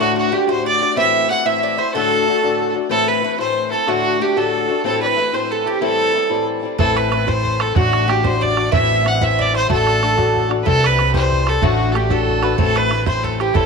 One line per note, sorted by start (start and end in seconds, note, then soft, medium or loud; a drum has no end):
0.00 0.32 A2 medium
0.00 0.30 D3 medium
0.00 0.32 A3 medium
0.00 0.32 D4 loud
0.00 0.15 F#4 medium
0.00 0.15 F#4 loud
0.00 0.15 F#4 medium
0.00 0.32 F#4 loud
0.15 0.30 F#4 medium
0.15 0.32 F#4 medium
0.15 0.36 F#4 medium
0.31 0.47 D3 medium
0.31 0.46 A3 medium
0.31 0.46 D4 medium
0.31 0.45 F#4 medium
0.31 0.47 G4 medium
0.31 0.48 G4 medium
0.31 0.49 G4 medium
0.47 0.81 A2 medium
0.47 0.81 D3 medium
0.47 0.83 A3 medium
0.47 0.80 D4 medium
0.47 0.79 F#4 medium
0.47 0.67 C5 medium
0.47 0.64 C5 medium
0.47 0.65 C5 medium
0.65 0.97 D5 medium
0.65 0.81 D5 medium
0.65 0.95 D5 loud
0.80 0.96 A3 soft
0.80 0.97 D4 medium
0.80 0.96 F#4 medium
0.80 0.96 D5 medium
0.96 1.29 A2 medium
0.96 1.28 E3 medium
0.96 1.31 A3 medium
0.96 1.29 C4 medium
0.96 1.30 E4 loud
0.96 1.29 E5 medium
0.96 1.28 E5 medium
0.96 1.28 E5 loud
1.29 1.45 E3 medium
1.29 1.44 A3 medium
1.29 1.45 C4 medium
1.29 1.44 E4 medium
1.29 1.44 F#5 medium
1.29 1.45 F#5 medium
1.29 1.48 F#5 loud
1.45 1.79 A2 soft
1.45 1.79 E3 soft
1.45 1.79 A3 medium
1.45 1.78 C4 medium
1.45 1.76 E4 medium
1.45 1.79 E5 medium
1.45 1.62 E5 medium
1.45 1.80 E5 medium
1.63 1.78 D5 medium
1.78 1.94 A3 soft
1.78 1.95 C4 soft
1.78 1.94 E4 medium
1.78 1.96 C5 medium
1.78 1.93 C5 medium
1.78 1.94 C5 medium
1.94 2.27 A2 medium
1.94 2.26 D3 medium
1.94 2.27 A3 medium
1.94 2.28 D4 medium
1.94 2.28 F#4 loud
1.94 2.76 A4 loud
1.94 2.72 A4 loud
1.94 2.72 A4 medium
2.27 2.43 D3 medium
2.27 2.42 A3 medium
2.27 2.42 D4 medium
2.27 2.41 F#4 medium
2.43 2.76 A2 medium
2.43 2.76 D3 medium
2.43 2.76 A3 medium
2.43 2.75 D4 medium
2.43 2.73 F#4 medium
2.74 2.89 A3 soft
2.74 2.90 D4 medium
2.74 2.91 F#4 medium
2.89 3.23 A2 medium
2.89 3.21 E3 medium
2.89 3.23 A3 medium
2.89 3.23 C4 medium
2.89 3.24 E4 medium
2.89 3.09 A4 medium
2.89 3.07 A4 medium
2.89 3.09 A4 loud
3.07 3.38 B4 medium
3.07 3.40 B4 loud
3.07 3.23 B4 medium
3.22 3.38 E3 medium
3.22 3.38 A3 medium
3.22 3.38 C4 medium
3.22 3.37 E4 medium
3.22 3.39 B4 medium
3.38 3.73 A2 medium
3.38 3.73 E3 medium
3.38 3.72 A3 medium
3.38 3.72 C4 soft
3.38 3.69 E4 medium
3.38 3.73 C5 medium
3.38 3.71 C5 medium
3.38 3.72 C5 medium
3.70 3.86 A3 medium
3.70 3.87 C4 soft
3.70 3.87 E4 medium
3.70 3.89 A4 medium
3.70 3.87 A4 medium
3.87 4.21 A2 medium
3.87 4.19 D3 medium
3.87 4.21 A3 medium
3.87 4.20 D4 medium
3.87 4.04 F#4 medium
3.87 4.23 F#4 loud
3.87 4.21 F#4 medium
4.04 4.19 F#4 medium
4.20 4.36 D3 medium
4.20 4.35 A3 medium
4.20 4.35 D4 medium
4.20 4.34 F#4 medium
4.20 4.26 G4 medium
4.20 4.38 G4 medium
4.35 4.70 A2 medium
4.35 4.70 D3 medium
4.35 4.70 A3 medium
4.35 4.68 D4 medium
4.35 4.66 F#4 medium
4.35 4.81 A4 medium
4.35 4.82 A4 medium
4.35 4.85 A4 medium
4.68 4.84 A3 medium
4.68 4.85 D4 soft
4.68 4.84 F#4 medium
4.84 5.18 A2 medium
4.84 5.16 E3 medium
4.84 5.18 A3 loud
4.84 5.17 C4 medium
4.84 5.19 E4 medium
4.84 5.01 A4 medium
4.84 5.02 A4 loud
4.84 5.01 A4 medium
5.02 5.17 B4 medium
5.02 5.35 B4 loud
5.02 5.08 D5 medium
5.07 5.35 B4 medium
5.17 5.32 E3 medium
5.17 5.32 A3 medium
5.17 5.32 C4 medium
5.17 5.31 E4 medium
5.17 5.34 B4 medium
5.32 5.67 A2 soft
5.32 5.80 E3 medium
5.32 5.66 A3 medium
5.32 5.67 C4 medium
5.32 5.65 E4 medium
5.32 5.51 C5 medium
5.32 5.52 C5 medium
5.32 5.50 C5 medium
5.51 5.68 A4 medium
5.51 5.66 A4 medium
5.65 5.82 A3 soft
5.65 5.81 C4 soft
5.65 5.81 E4 medium
5.65 5.82 G4 medium
5.65 5.81 G4 medium
5.65 5.82 G4 medium
5.81 6.15 A2 medium
5.81 6.13 E3 medium
5.81 6.14 G3 medium
5.81 6.15 C4 medium
5.81 6.16 E4 medium
5.81 6.44 A4 medium
5.81 6.45 A4 loud
6.15 6.30 E3 medium
6.15 6.29 G3 medium
6.15 6.29 C4 medium
6.15 6.28 E4 medium
6.30 6.64 A2 soft
6.30 6.64 E3 medium
6.30 6.64 G3 medium
6.30 6.62 C4 medium
6.30 6.61 E4 medium
6.63 6.80 G3 medium
6.63 6.79 C4 soft
6.63 6.79 E4 medium
6.78 7.74 A1 medium
6.78 7.12 A2 medium
6.78 7.10 E3 loud
6.78 7.13 A3 medium
6.78 7.11 C4 medium
6.78 7.13 E4 medium
6.78 6.95 A4 medium
6.78 6.98 A4 medium
6.78 6.99 A4 loud
6.78 bodhran medium
6.96 7.27 B4 medium
6.96 7.11 B4 medium
6.96 7.30 B4 medium
6.96 bodhran medium
7.11 7.26 E3 medium
7.11 7.26 A3 medium
7.11 7.26 C4 medium
7.11 7.25 E4 medium
7.11 7.27 B4 medium
7.11 bodhran medium
7.26 7.61 A2 medium
7.26 7.61 E3 medium
7.26 7.61 A3 medium
7.26 7.61 C4 medium
7.26 7.58 E4 medium
7.26 7.62 C5 medium
7.26 7.78 C5 medium
7.26 7.63 C5 loud
7.26 bodhran medium
7.45 bodhran soft
7.60 7.74 A3 soft
7.60 7.75 C4 soft
7.60 7.76 E4 soft
7.60 7.77 A4 medium
7.60 7.76 A4 medium
7.60 bodhran medium
7.75 8.71 A1 medium
7.75 8.09 A2 medium
7.75 8.07 D3 medium
7.75 8.08 A3 medium
7.75 8.08 D4 medium
7.75 8.08 F#4 medium
7.75 8.11 F#4 loud
7.75 8.07 F#4 medium
7.75 8.09 F#4 loud
7.75 bodhran medium
7.93 bodhran medium
8.08 8.23 D3 medium
8.08 8.23 A3 medium
8.08 8.23 D4 medium
8.08 8.22 F#4 medium
8.08 8.25 G4 medium
8.08 8.26 G4 medium
8.08 bodhran medium
8.24 8.58 A2 medium
8.24 8.57 D3 medium
8.24 8.58 A3 soft
8.24 8.56 D4 medium
8.24 8.55 F#4 medium
8.24 8.44 C5 medium
8.24 8.44 C5 loud
8.24 8.41 C5 medium
8.24 bodhran medium
8.41 8.71 D5 medium
8.41 8.73 D5 loud
8.41 8.72 D5 medium
8.41 bodhran soft
8.56 8.71 A3 soft
8.56 8.72 D4 medium
8.56 8.72 F#4 medium
8.56 bodhran medium
8.71 9.68 A1 medium
8.71 9.05 A2 medium
8.71 9.03 E3 loud
8.71 9.04 A3 medium
8.71 9.04 C4 medium
8.71 9.05 E4 medium
8.71 9.18 E5 medium
8.71 9.08 E5 medium
8.71 9.09 E5 loud
8.71 bodhran medium
9.04 9.21 E3 medium
9.04 9.20 A3 medium
9.04 9.21 C4 medium
9.04 9.20 E4 medium
9.04 9.24 F#5 medium
9.04 9.25 F#5 loud
9.04 bodhran medium
9.21 9.55 A2 medium
9.21 9.55 E3 medium
9.21 9.53 A3 medium
9.21 9.55 C4 medium
9.21 9.52 E4 medium
9.21 9.38 E5 medium
9.21 9.41 E5 medium
9.21 9.43 E5 loud
9.21 bodhran medium
9.39 9.53 D5 medium
9.39 9.55 D5 medium
9.39 9.56 D5 loud
9.39 bodhran soft
9.53 9.68 A3 soft
9.53 9.69 C4 soft
9.53 9.69 E4 medium
9.53 9.69 C5 medium
9.53 9.72 C5 medium
9.53 9.70 C5 loud
9.53 bodhran soft
9.68 10.65 A1 medium
9.68 10.02 A2 medium
9.68 10.00 D3 loud
9.68 10.01 A3 medium
9.68 10.02 D4 medium
9.68 10.02 F#4 medium
9.68 10.47 A4 medium
9.68 10.51 A4 medium
9.68 10.48 A4 loud
9.68 bodhran medium
9.87 bodhran medium
10.01 10.17 D3 medium
10.01 10.16 A3 medium
10.01 10.15 D4 medium
10.01 10.16 F#4 medium
10.01 bodhran medium
10.16 10.51 A2 medium
10.16 10.51 D3 medium
10.16 10.50 A3 medium
10.16 10.49 D4 medium
10.16 10.48 F#4 medium
10.16 bodhran medium
10.35 bodhran soft
10.49 10.66 A3 soft
10.49 10.66 D4 medium
10.49 10.65 F#4 medium
10.49 bodhran medium
10.63 10.98 C3 medium
10.63 10.98 E3 medium
10.63 10.99 G3 medium
10.63 10.99 C4 medium
10.63 10.83 A4 medium
10.63 10.87 A4 loud
10.63 10.68 B4 medium
10.67 11.61 C2 medium
10.67 11.00 G4 medium
10.67 bodhran medium
10.82 11.15 B4 medium
10.82 11.13 B4 medium
10.82 bodhran medium
10.86 11.15 B4 loud
10.99 11.14 E3 medium
10.99 11.14 G3 medium
10.99 11.13 C4 medium
10.99 11.12 G4 medium
10.99 bodhran medium
11.14 11.48 C3 medium
11.14 11.48 E3 medium
11.14 11.47 G3 medium
11.14 11.47 C4 medium
11.14 11.45 G4 medium
11.14 11.46 C5 medium
11.14 11.64 C5 medium
11.14 11.50 C5 medium
11.14 bodhran medium
11.31 bodhran soft
11.47 11.62 G3 medium
11.47 11.63 C4 soft
11.47 11.62 G4 medium
11.47 11.61 A4 medium
11.47 11.65 A4 medium
11.47 bodhran medium
11.62 12.57 A1 medium
11.62 11.95 A2 loud
11.62 11.93 D3 medium
11.62 11.94 A3 loud
11.62 11.94 D4 medium
11.62 11.96 F#4 medium
11.62 11.96 F#4 loud
11.62 11.93 F#4 loud
11.62 11.68 A4 medium
11.62 bodhran medium
11.67 11.97 F#4 medium
11.92 12.10 D3 medium
11.92 12.10 A3 medium
11.92 12.09 D4 medium
11.92 11.98 A4 medium
11.92 bodhran medium
11.96 12.08 F#4 medium
11.96 12.13 G4 medium
11.96 12.10 G4 medium
11.96 12.12 G4 medium
12.10 12.44 A2 medium
12.10 12.44 D3 medium
12.10 12.45 A3 medium
12.10 12.43 D4 medium
12.10 12.41 F#4 medium
12.10 12.41 A4 medium
12.10 12.59 A4 medium
12.10 12.58 A4 medium
12.10 bodhran medium
12.27 bodhran soft
12.42 12.57 A3 soft
12.42 12.58 D4 medium
12.42 12.58 F#4 medium
12.42 12.58 B4 medium
12.42 bodhran medium
12.57 13.53 A1 medium
12.57 12.91 A2 medium
12.57 12.90 E3 medium
12.57 12.91 A3 medium
12.57 12.92 C4 medium
12.57 12.92 E4 medium
12.57 12.74 A4 medium
12.57 12.78 A4 medium
12.57 12.79 A4 loud
12.57 bodhran medium
12.76 13.05 B4 medium
12.76 13.07 B4 loud
12.76 12.82 D5 medium
12.76 bodhran medium
12.81 13.06 B4 medium
12.90 13.06 E3 medium
12.90 13.06 A3 medium
12.90 13.05 C4 medium
12.90 13.05 E4 medium
12.90 bodhran medium
13.06 13.40 A2 soft
13.06 13.54 E3 soft
13.06 13.42 A3 medium
13.06 13.41 C4 medium
13.06 13.40 E4 medium
13.06 13.23 C5 medium
13.06 13.26 C5 medium
13.06 bodhran medium
13.24 13.40 A4 medium
13.24 13.39 A4 medium
13.24 bodhran soft
13.39 13.55 A3 soft
13.39 13.55 C4 soft
13.39 13.54 E4 medium
13.39 13.56 G4 medium
13.39 13.57 G4 medium
13.39 13.55 G4 medium
13.39 bodhran medium
13.54 13.66 A1 medium
13.54 13.66 A2 medium
13.54 13.66 E3 medium
13.54 13.66 G3 medium
13.54 13.66 C4 medium
13.54 13.66 E4 medium
13.54 13.66 A4 medium
13.54 13.66 A4 loud
13.54 bodhran medium